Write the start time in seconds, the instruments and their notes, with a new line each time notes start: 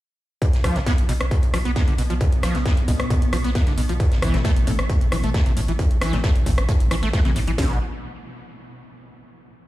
0.42 acid bass B2, synth drone B2 B3, kick, closed hi-hat
0.53 sub bass B1, snare, closed hi-hat
0.63 sub bass B1, acid bass F3, kick, cross-stick, closed hi-hat, open hi-hat
0.75 sub bass B1, acid bass A2, snare, closed hi-hat
0.86 acid bass B3, kick, snare, closed hi-hat
0.98 sub bass B1, closed hi-hat
1.09 sub bass B1, acid bass B2, closed hi-hat, open hi-hat
1.21 sub bass B1, cross-stick, closed hi-hat
1.31 acid bass B2, kick, closed hi-hat
1.43 sub bass B1, closed hi-hat
1.54 sub bass B1, acid bass F3, cross-stick, closed hi-hat, open hi-hat
1.65 sub bass B1, acid bass B3, closed hi-hat
1.76 acid bass B3, kick, snare, closed hi-hat
1.88 sub bass B1, acid bass D3, closed hi-hat
1.98 sub bass B1, acid bass B2, closed hi-hat, open hi-hat
2.10 sub bass B1, acid bass F3, closed hi-hat
2.20 acid bass B2, kick, closed hi-hat
2.32 sub bass B1, closed hi-hat
2.43 sub bass B1, acid bass F3, cross-stick, snare, closed hi-hat, open hi-hat
2.55 sub bass B1, acid bass A2, snare, closed hi-hat
2.65 acid bass B3, kick, snare, closed hi-hat
2.77 sub bass B1, closed hi-hat
2.88 sub bass B1, acid bass B2, kick, closed hi-hat, open hi-hat
3.00 sub bass B1, cross-stick, closed hi-hat
3.10 acid bass B2, kick, closed hi-hat
3.22 sub bass B1, closed hi-hat
3.33 sub bass B1, acid bass F3, cross-stick, closed hi-hat, open hi-hat
3.44 sub bass B1, acid bass B3, snare, closed hi-hat
3.55 acid bass B3, kick, snare, closed hi-hat
3.67 sub bass B1, acid bass D3, snare, closed hi-hat
3.77 sub bass B1, acid bass B2, closed hi-hat, open hi-hat
3.89 sub bass B1, acid bass F3, closed hi-hat
4.00 acid bass A2, kick, closed hi-hat
4.12 sub bass A1, snare, closed hi-hat
4.22 sub bass A1, acid bass E3, kick, cross-stick, closed hi-hat, open hi-hat
4.34 sub bass A1, acid bass G2, synth stab E3 A3 C4, snare, closed hi-hat
4.44 acid bass A3, kick, snare, closed hi-hat
4.56 sub bass A1, closed hi-hat
4.67 sub bass A1, acid bass A2, synth stab E3 A3 C4, closed hi-hat, open hi-hat
4.79 sub bass A1, cross-stick, closed hi-hat
4.90 acid bass A2, kick, closed hi-hat
5.01 sub bass A1, closed hi-hat
5.12 sub bass A1, acid bass E3, cross-stick, closed hi-hat, open hi-hat
5.23 sub bass A1, acid bass A3, closed hi-hat
5.34 acid bass A3, kick, snare, closed hi-hat
5.46 sub bass A1, acid bass C3, closed hi-hat
5.57 sub bass A1, acid bass A2, closed hi-hat, open hi-hat
5.68 sub bass A1, acid bass E3, closed hi-hat
5.79 acid bass A2, kick, closed hi-hat
5.91 sub bass A1, closed hi-hat
6.01 sub bass A1, acid bass E3, cross-stick, snare, closed hi-hat, open hi-hat
6.13 sub bass A1, acid bass G2, synth stab E3 A3 C4, snare, closed hi-hat
6.23 acid bass A3, kick, snare, closed hi-hat
6.36 sub bass A1, closed hi-hat
6.46 sub bass A1, acid bass A2, kick, closed hi-hat, open hi-hat
6.58 sub bass A1, cross-stick, closed hi-hat
6.69 acid bass A2, kick, closed hi-hat
6.80 sub bass A1, closed hi-hat
6.91 sub bass A1, acid bass E3, cross-stick, closed hi-hat, open hi-hat
7.03 sub bass A1, acid bass A3, snare, closed hi-hat
7.13 acid bass A3, kick, snare, closed hi-hat
7.25 sub bass A1, acid bass C3, synth stab E3 A3 C4, snare, closed hi-hat
7.36 sub bass A1, acid bass A2, closed hi-hat, open hi-hat
7.48 sub bass A1, acid bass E3, closed hi-hat
7.58 sub bass B1, acid bass B2, synth stab F#3 B3 D4, kick, snare, open hi-hat